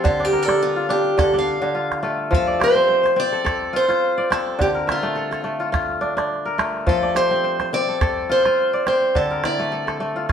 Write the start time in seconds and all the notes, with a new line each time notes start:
Already playing: F3 C4 F4 A4
0.04 D3 F4, calabash thump
0.20 D4
0.25 G4
0.32 A#4, calabash click
0.43 A4
0.48 D4 A4, calabash click
0.62 F4
0.76 F4
0.89 D4 G4, calabash click
1.18 D3 A4, calabash thump, calabash click
1.33 D4
1.39 F5
1.62 D3
1.75 F4
1.92 calabash click
2.03 A3 F4
2.31 F3 A4, calabash thump, calabash click
2.47 D5
2.60 G4 C5, calabash click
2.75 C4
2.88 C5
3.03 C5, calabash click
3.16 C4 D5
3.32 A4, calabash click
3.45 A4, calabash thump, calabash click
3.73 F4 C5
3.89 F4, calabash click
4.18 D5
4.30 C4 A4, calabash click
4.59 D3 G4, calabash thump, calabash click
4.75 A#4
4.87 E5, calabash click
4.92 F4
5.03 A3
5.16 A4
5.31 A4, calabash click
5.44 A3
5.60 F4, calabash click
5.72 F4, calabash thump, calabash click
6.01 D4
6.17 D4, calabash click
6.45 A#4
6.58 A3, calabash click
6.87 F3 A4, calabash thump, calabash click
7.02 D5
7.15 G4 C5, calabash click
7.31 C4
7.44 C5
7.60 C5, calabash click
7.73 C4 D5
7.88 A4
8.01 A4, calabash thump, calabash click
8.30 F4 C5
8.45 F4, calabash click
8.73 D5
8.87 C4 C5, calabash click
9.15 D3 A4, calabash thump
9.31 A#4
9.44 E4 D5, calabash click
9.59 A3
9.72 A4
9.87 A4, calabash click
10.00 A3
10.16 F4
10.29 F4